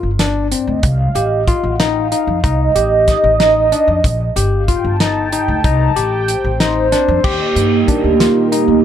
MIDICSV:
0, 0, Header, 1, 5, 480
1, 0, Start_track
1, 0, Tempo, 640342
1, 627, Time_signature, 5, 3, 24, 8
1, 6632, End_track
2, 0, Start_track
2, 0, Title_t, "Analog synth pad"
2, 0, Program_c, 0, 89
2, 1705, Note_on_c, 0, 75, 85
2, 2876, Note_off_c, 0, 75, 0
2, 4717, Note_on_c, 0, 72, 79
2, 5402, Note_off_c, 0, 72, 0
2, 5425, Note_on_c, 0, 58, 76
2, 5434, Note_on_c, 0, 63, 72
2, 5444, Note_on_c, 0, 67, 91
2, 6601, Note_off_c, 0, 58, 0
2, 6606, Note_off_c, 0, 63, 0
2, 6611, Note_off_c, 0, 67, 0
2, 6632, End_track
3, 0, Start_track
3, 0, Title_t, "Tine electric piano"
3, 0, Program_c, 1, 4
3, 148, Note_on_c, 1, 62, 78
3, 350, Note_off_c, 1, 62, 0
3, 387, Note_on_c, 1, 60, 65
3, 590, Note_off_c, 1, 60, 0
3, 865, Note_on_c, 1, 67, 72
3, 1069, Note_off_c, 1, 67, 0
3, 1106, Note_on_c, 1, 65, 79
3, 1310, Note_off_c, 1, 65, 0
3, 1347, Note_on_c, 1, 63, 82
3, 1550, Note_off_c, 1, 63, 0
3, 1589, Note_on_c, 1, 63, 70
3, 1791, Note_off_c, 1, 63, 0
3, 1829, Note_on_c, 1, 63, 77
3, 2031, Note_off_c, 1, 63, 0
3, 2066, Note_on_c, 1, 67, 73
3, 2472, Note_off_c, 1, 67, 0
3, 2548, Note_on_c, 1, 63, 80
3, 2751, Note_off_c, 1, 63, 0
3, 2789, Note_on_c, 1, 62, 74
3, 2991, Note_off_c, 1, 62, 0
3, 3269, Note_on_c, 1, 67, 77
3, 3471, Note_off_c, 1, 67, 0
3, 3510, Note_on_c, 1, 65, 79
3, 3711, Note_off_c, 1, 65, 0
3, 3753, Note_on_c, 1, 63, 86
3, 3954, Note_off_c, 1, 63, 0
3, 3992, Note_on_c, 1, 63, 73
3, 4193, Note_off_c, 1, 63, 0
3, 4230, Note_on_c, 1, 63, 87
3, 4432, Note_off_c, 1, 63, 0
3, 4468, Note_on_c, 1, 67, 80
3, 4873, Note_off_c, 1, 67, 0
3, 4948, Note_on_c, 1, 63, 89
3, 5150, Note_off_c, 1, 63, 0
3, 5189, Note_on_c, 1, 62, 85
3, 5391, Note_off_c, 1, 62, 0
3, 5427, Note_on_c, 1, 67, 90
3, 5833, Note_off_c, 1, 67, 0
3, 5909, Note_on_c, 1, 62, 70
3, 6111, Note_off_c, 1, 62, 0
3, 6149, Note_on_c, 1, 65, 72
3, 6351, Note_off_c, 1, 65, 0
3, 6387, Note_on_c, 1, 63, 77
3, 6590, Note_off_c, 1, 63, 0
3, 6632, End_track
4, 0, Start_track
4, 0, Title_t, "Upright bass"
4, 0, Program_c, 2, 32
4, 23, Note_on_c, 2, 31, 68
4, 388, Note_off_c, 2, 31, 0
4, 505, Note_on_c, 2, 38, 74
4, 596, Note_off_c, 2, 38, 0
4, 623, Note_on_c, 2, 36, 102
4, 806, Note_off_c, 2, 36, 0
4, 861, Note_on_c, 2, 33, 83
4, 1135, Note_off_c, 2, 33, 0
4, 1225, Note_on_c, 2, 33, 69
4, 1589, Note_off_c, 2, 33, 0
4, 1704, Note_on_c, 2, 41, 80
4, 1796, Note_off_c, 2, 41, 0
4, 1825, Note_on_c, 2, 36, 98
4, 2008, Note_off_c, 2, 36, 0
4, 2064, Note_on_c, 2, 33, 75
4, 2337, Note_off_c, 2, 33, 0
4, 2426, Note_on_c, 2, 33, 78
4, 2789, Note_off_c, 2, 33, 0
4, 2905, Note_on_c, 2, 41, 80
4, 2996, Note_off_c, 2, 41, 0
4, 3029, Note_on_c, 2, 34, 93
4, 3210, Note_off_c, 2, 34, 0
4, 3267, Note_on_c, 2, 31, 77
4, 3539, Note_off_c, 2, 31, 0
4, 3632, Note_on_c, 2, 31, 78
4, 3993, Note_off_c, 2, 31, 0
4, 4109, Note_on_c, 2, 38, 85
4, 4199, Note_off_c, 2, 38, 0
4, 4230, Note_on_c, 2, 36, 101
4, 4410, Note_off_c, 2, 36, 0
4, 4470, Note_on_c, 2, 33, 82
4, 4741, Note_off_c, 2, 33, 0
4, 4830, Note_on_c, 2, 33, 78
4, 5192, Note_off_c, 2, 33, 0
4, 5310, Note_on_c, 2, 41, 90
4, 5399, Note_off_c, 2, 41, 0
4, 5429, Note_on_c, 2, 39, 90
4, 5518, Note_off_c, 2, 39, 0
4, 5665, Note_on_c, 2, 43, 83
4, 5847, Note_off_c, 2, 43, 0
4, 6025, Note_on_c, 2, 38, 68
4, 6207, Note_off_c, 2, 38, 0
4, 6505, Note_on_c, 2, 38, 78
4, 6596, Note_off_c, 2, 38, 0
4, 6632, End_track
5, 0, Start_track
5, 0, Title_t, "Drums"
5, 145, Note_on_c, 9, 38, 95
5, 145, Note_on_c, 9, 42, 78
5, 219, Note_off_c, 9, 38, 0
5, 219, Note_off_c, 9, 42, 0
5, 387, Note_on_c, 9, 42, 61
5, 462, Note_off_c, 9, 42, 0
5, 623, Note_on_c, 9, 42, 80
5, 625, Note_on_c, 9, 36, 106
5, 698, Note_off_c, 9, 42, 0
5, 700, Note_off_c, 9, 36, 0
5, 866, Note_on_c, 9, 42, 53
5, 941, Note_off_c, 9, 42, 0
5, 1106, Note_on_c, 9, 36, 63
5, 1106, Note_on_c, 9, 42, 54
5, 1181, Note_off_c, 9, 36, 0
5, 1181, Note_off_c, 9, 42, 0
5, 1347, Note_on_c, 9, 38, 98
5, 1347, Note_on_c, 9, 42, 76
5, 1422, Note_off_c, 9, 38, 0
5, 1422, Note_off_c, 9, 42, 0
5, 1588, Note_on_c, 9, 42, 54
5, 1663, Note_off_c, 9, 42, 0
5, 1828, Note_on_c, 9, 36, 97
5, 1828, Note_on_c, 9, 42, 72
5, 1903, Note_off_c, 9, 36, 0
5, 1903, Note_off_c, 9, 42, 0
5, 2067, Note_on_c, 9, 42, 56
5, 2142, Note_off_c, 9, 42, 0
5, 2306, Note_on_c, 9, 38, 33
5, 2306, Note_on_c, 9, 42, 57
5, 2307, Note_on_c, 9, 36, 66
5, 2381, Note_off_c, 9, 38, 0
5, 2381, Note_off_c, 9, 42, 0
5, 2382, Note_off_c, 9, 36, 0
5, 2548, Note_on_c, 9, 38, 111
5, 2548, Note_on_c, 9, 42, 75
5, 2623, Note_off_c, 9, 38, 0
5, 2623, Note_off_c, 9, 42, 0
5, 2791, Note_on_c, 9, 42, 60
5, 2866, Note_off_c, 9, 42, 0
5, 3030, Note_on_c, 9, 36, 103
5, 3030, Note_on_c, 9, 42, 89
5, 3105, Note_off_c, 9, 36, 0
5, 3105, Note_off_c, 9, 42, 0
5, 3272, Note_on_c, 9, 42, 63
5, 3347, Note_off_c, 9, 42, 0
5, 3510, Note_on_c, 9, 36, 67
5, 3511, Note_on_c, 9, 42, 64
5, 3585, Note_off_c, 9, 36, 0
5, 3585, Note_off_c, 9, 42, 0
5, 3750, Note_on_c, 9, 38, 108
5, 3750, Note_on_c, 9, 42, 83
5, 3825, Note_off_c, 9, 38, 0
5, 3825, Note_off_c, 9, 42, 0
5, 3992, Note_on_c, 9, 42, 64
5, 4067, Note_off_c, 9, 42, 0
5, 4230, Note_on_c, 9, 36, 120
5, 4230, Note_on_c, 9, 42, 82
5, 4305, Note_off_c, 9, 36, 0
5, 4305, Note_off_c, 9, 42, 0
5, 4471, Note_on_c, 9, 42, 60
5, 4546, Note_off_c, 9, 42, 0
5, 4710, Note_on_c, 9, 42, 56
5, 4785, Note_off_c, 9, 42, 0
5, 4949, Note_on_c, 9, 38, 115
5, 4949, Note_on_c, 9, 42, 82
5, 5024, Note_off_c, 9, 38, 0
5, 5024, Note_off_c, 9, 42, 0
5, 5189, Note_on_c, 9, 38, 36
5, 5189, Note_on_c, 9, 42, 60
5, 5264, Note_off_c, 9, 38, 0
5, 5264, Note_off_c, 9, 42, 0
5, 5427, Note_on_c, 9, 49, 90
5, 5428, Note_on_c, 9, 36, 101
5, 5502, Note_off_c, 9, 49, 0
5, 5503, Note_off_c, 9, 36, 0
5, 5670, Note_on_c, 9, 42, 56
5, 5744, Note_off_c, 9, 42, 0
5, 5908, Note_on_c, 9, 36, 66
5, 5909, Note_on_c, 9, 42, 49
5, 5983, Note_off_c, 9, 36, 0
5, 5984, Note_off_c, 9, 42, 0
5, 6149, Note_on_c, 9, 38, 104
5, 6149, Note_on_c, 9, 42, 79
5, 6224, Note_off_c, 9, 38, 0
5, 6224, Note_off_c, 9, 42, 0
5, 6389, Note_on_c, 9, 42, 61
5, 6464, Note_off_c, 9, 42, 0
5, 6632, End_track
0, 0, End_of_file